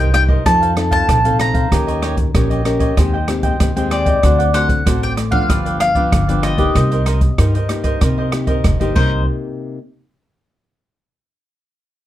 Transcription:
Already playing: C2 G2 G5
0.00 A#4 C5 D#5
0.14 A#3 D#4 G4 G5, cross-stick, closed hi-hat
0.28 A#4 C5 D#5, kick
0.46 F2 F3 C4 D#4 A4 C5 F5 A5, kick, cross-stick, closed hi-hat
0.61 A4 C5 F5, closed hi-hat
0.76 C4 D#4 A4, muted cavaquinho stroke, cross-stick, closed hi-hat
0.91 A4 C5 F5 A5, kick, closed hi-hat
1.09 A#1 C3, kick, cross-stick, closed hi-hat
1.25 C4 D#4 A4 C5 F5, closed hi-hat
1.39 D#4 A4 C5 F5 A#5, cross-stick, closed hi-hat
1.54 A4 C5 F5, kick, closed hi-hat
1.71 D#2 D#3 C#4 D#4 G4 A#4 C#5 D#5, kick, cross-stick, closed hi-hat
1.87 G4 C#5 D#5, closed hi-hat
2.02 D#4 G4 C#5 D#5, cross-stick, closed hi-hat
2.17 muted cavaquinho stroke, kick, closed hi-hat
2.34 A#1 A#2 C#4 D#4 G4 A#4 C#5 D#5, kick, cross-stick, closed hi-hat
2.50 G4 C#5 D#5, closed hi-hat
2.65 C#4 G4 A#4, cross-stick, closed hi-hat
2.79 G4 C#5 D#5, kick, closed hi-hat
2.97 D#2 D#3 G#3 C4 G4 G#4 C5 D#5 G5, kick, cross-stick, closed hi-hat
3.13 C5 D#5 G5
3.28 G#3 C4 G4, muted cavaquinho stroke, cross-stick, closed hi-hat
3.43 C5 D#5 G5, kick, closed hi-hat
3.60 D#2 D#3 G#3 C4 G4, kick, cross-stick, closed hi-hat
3.76 G#3 C4 G4 C5 D#5 G5, closed hi-hat
3.91 G#4 C5 D5 D#5 G5, cross-stick, closed hi-hat
4.06 C5 D#5 G5, kick, closed hi-hat
4.22 D2 D3 A3 C4 D4 F#4 C5 D5 F#5, kick, cross-stick, closed hi-hat
4.38 C5 D5 F#5, closed hi-hat
4.53 A3 C4 D4 F#4 C5 D5 F#5, cross-stick, closed hi-hat
4.69 muted cavaquinho stroke, kick, closed hi-hat
4.86 A1 A2 A3 C4 D4 F#4 C5 D5 F#5, kick, cross-stick, closed hi-hat
5.03 C5 D5 G5, closed hi-hat
5.17 cross-stick, closed hi-hat
5.31 F3 B3 D4 C5 D5 F5 F#5, kick
5.48 G1 G2 F4 G4 B4 D5, kick, cross-stick, closed hi-hat
5.65 G4 B4 D5, closed hi-hat
5.80 F5, muted cavaquinho stroke, cross-stick, closed hi-hat
5.95 F3 B3 D4 G4 B4 D5, kick, closed hi-hat
6.12 G1 D3, kick, cross-stick, closed hi-hat
6.28 F3 B3 D4 G4 B4 D5, closed hi-hat
6.42 F4 G4 B4 D5 D#5, cross-stick, closed hi-hat
6.58 A#3 D#4 G4 B4 D5, kick, closed hi-hat
6.75 C2 C3 D#4 A#4 C5 D#5, kick, cross-stick, closed hi-hat
6.91 A#4 C5 D#5, closed hi-hat
7.06 D#4 A#4 C5 D#5, cross-stick, closed hi-hat
7.21 muted cavaquinho stroke, kick, closed hi-hat
7.38 G2 A#3 D#4 G4 A#4 C5 D#5, kick, cross-stick, closed hi-hat
7.54 A#4 C5 D#5, closed hi-hat
7.69 A#3 D#4 G4, cross-stick, closed hi-hat
7.84 A#4 C5 D#5, kick, closed hi-hat
8.01 C3 D#4 A#4 C5 D#5, kick, cross-stick, closed hi-hat
8.18 A#4 C5 D#5
8.32 A#3 D#4 G4, muted cavaquinho stroke, cross-stick, closed hi-hat
8.47 A#4 C5 D#5, kick, closed hi-hat
8.64 F1 G2, kick, cross-stick, closed hi-hat
8.80 G1 A#3 D#4 G4 A#4 C5 D#5, closed hi-hat
8.95 C2 C3 A#3 D#4 G4 A#4 C5 D#5, kick, crash

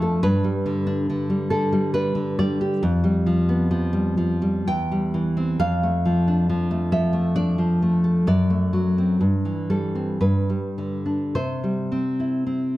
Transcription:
Already playing: F2 F3 A3 D4
0.02 A4
0.23 G2 B4
0.44 G3
0.66 D3
0.87 D4
1.10 D3
1.30 G3
1.50 D3 A4
1.72 G3
1.94 D4 B4
2.15 D3
2.39 G3 D5
2.61 G4
2.83 F2
3.04 G3
3.26 F3
3.49 B3
3.71 F3
3.93 G3
4.17 F3
4.42 G3
4.68 E2 G5
4.92 G3
5.14 E3
5.37 C4
5.59 F2 F5
5.83 A3
6.05 F3
6.28 D4
6.50 F3
6.71 A3
6.92 F3 E5
7.13 A3
7.36 D4 D5
7.58 F3
7.82 A3
8.04 A4
8.27 F#2 D5
8.50 A3
8.73 F#3
8.98 C4
9.21 G2
9.45 E3
9.70 G3 A4
9.95 C4
10.21 G2 B4
10.50 G3
10.78 D3
11.06 D4
11.35 C3 C5
11.64 G3
11.92 C4
12.20 E4
12.47 C4

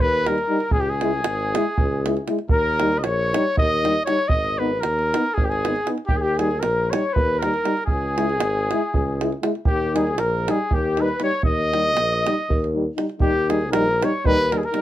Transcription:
0.00 D#2 B4
0.26 G3 D#4 A#4, davul high
0.38 davul high
0.48 G3 D#4
0.60 davul high
0.71 C#2 G#4, davul low
0.80 G4
0.90 G#4
1.01 G#3 E4, davul high
1.13 davul high
1.24 G#1, davul high
1.55 G#3 E4, davul high
1.78 C#2, davul low
2.05 G#3 E4, davul high
2.17 davul high
2.27 G#3 E4, davul high
2.39 davul high
2.49 D#2 A#4, davul low
2.80 G3 D#4, davul high
2.92 davul high
2.98 D#5
3.03 A#1 C#5, davul high
3.33 G3 D#4, davul high
3.57 D#2 D#5, davul low
3.84 G3 D#4, davul high
3.96 davul high
4.05 G3 D#4 C#5, davul high
4.19 davul high
4.28 G#1 D#5, davul low
4.45 davul high
4.58 B3 D#4 B4
4.81 D#2 A#4, davul high
4.99 davul high
5.14 B3 D#4, davul high
5.26 davul high
5.34 G#1 G#4, davul low
5.45 G4
5.49 G#4, davul high
5.64 B3 D#4, davul high
5.76 davul high
5.86 B3 D#4, davul high
5.98 davul high
6.07 D#2 G4, davul low
6.16 G#4
6.21 G4
6.37 G3 D#4 G#4, davul high
6.51 davul high
6.60 A#1 A#4, davul high
6.90 G3 D#4 C#5, davul high
7.13 D#2 B4, davul low
7.39 G3 A#4, davul high
7.43 D#4
7.54 davul high
7.65 G3 D#4, davul high
7.77 davul high
7.86 C#2 G#4, davul low
8.17 G#3 E4, davul high
8.29 davul high
8.40 G#1, davul high
8.71 G#3 E4, davul high
8.94 C#2, davul low
9.20 G#3 E4, davul high
9.32 davul high
9.43 G#3 E4, davul high
9.55 davul high
9.65 D#2 G4, davul low
9.95 G3 D#4 G#4, davul high
10.07 davul high
10.18 A#1 A#4, davul high
10.48 G3 D#4 G#4, davul high
10.71 D#2 G4, davul low
10.75 G4
10.97 G3 D#4 B4, davul high
11.08 davul high
11.20 G3 D#4 C#5, davul high
11.31 davul high
11.43 D#2 D#5, davul low
11.58 davul high
11.72 G3 D#4, davul high
11.85 davul high
11.96 A#1, davul high
12.12 davul high
12.26 G3 D#4, davul high
12.39 davul high
12.49 D#2, davul low
12.64 davul high
12.74 G3 D#4
12.96 G3 D#4, davul high
13.09 davul high
13.20 D#2 G3 D#4 G4, davul low
13.49 G3 D#4 G#4, davul high
13.61 davul high
13.72 A#1 G3 D#4 A#4, davul high
14.02 G3 D#4 C#5, davul high
14.25 D#2 G3 D#4 B4, davul low
14.51 G3 D#4 A#4, davul high
14.58 G#4
14.63 A#4, davul high
14.72 G3 D#4, davul high

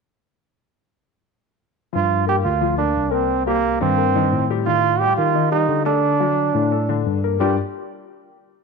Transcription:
1.93 G2 F3 F4
2.27 A#3 G4 A#4
2.44 D2 F4
2.61 F3 F4
2.78 A#3 D4 A#4
2.96 C2
3.11 A#3 C4 A#4
3.46 G3 A#3 G4
3.81 G2 D#3 C4 D#4
3.98 A#3 A#4
4.15 G2 D#3 D#4
4.32 A2
4.50 G3 G4
4.66 D#3 D#4 F4
5.00 G3 G4
5.17 D#3 F4
5.35 D#3 D#4
5.52 G3 D#4 G4
5.69 D3
5.85 A3 D4 A4
6.20 F#3 F#4
6.54 A2 D3 D4
6.72 A3 A4
6.89 D3 D4
7.06 G2
7.24 A#3 A#4
7.40 G2 G3 D4 F4 G4 A#4 D5

